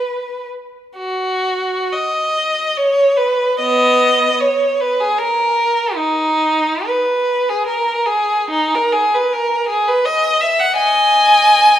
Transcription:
Already playing: B4
0.97 F#4
1.93 D#5
2.77 C#5
3.16 B4
3.60 B3 D#5
4.40 C#5
4.80 B4
5.00 G#4
5.18 A#4
5.96 D#4
6.87 B4
7.49 G#4
7.66 A#4
8.06 G#4
8.50 D#4
8.74 A#4
8.93 G#4
9.14 B4
9.33 A#4
9.68 G#4
9.88 B4
10.05 D#5
10.41 E5
10.60 F#5
10.76 D#5 G#5

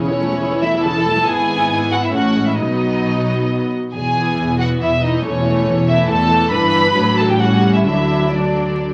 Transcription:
Already playing: E1 E2
0.00 C#4 E4 C#5
0.10 E3
0.21 A3
0.31 E3
0.42 C#3
0.52 E3
0.63 A3 E4 E5
0.74 E3
0.84 C#3 A4 A5
0.96 E3
1.06 A3
1.17 E3
1.27 G#1 G#2 B3 E4 G#4 G#5
1.91 F#4 F#5
2.04 E4 E5
2.13 A1 A2 A3 C#4 F#4 F#5
2.36 G#3
2.47 E4 E5
2.58 B1 B2 F#3 B3 D#4 D#5
3.94 E1 E2 G#4 G#5
4.17 E3 B3
4.38 E1 E2
4.60 E3 B3 F#4 F#5
4.81 E1 E2 E4 E5
5.03 E3 B3 D#4 D#5
5.24 E1 E2 E3 A3 C#4 C#5
5.46 E3 A3
5.67 E1 E2
5.88 E3 A3 E4 E5
6.09 E1 E2 A4 A5
6.31 E3 A3
6.52 G1 G2 E3 D4 B4 B5
6.95 A1 A2 F#3 D4
7.17 A4 A5
7.29 G4 G5
7.39 G3 C#4 F#4 F#5
7.74 E4 E5
7.86 D2 D3 F#3 D4 E4 E5
8.33 F#3 D4 D5

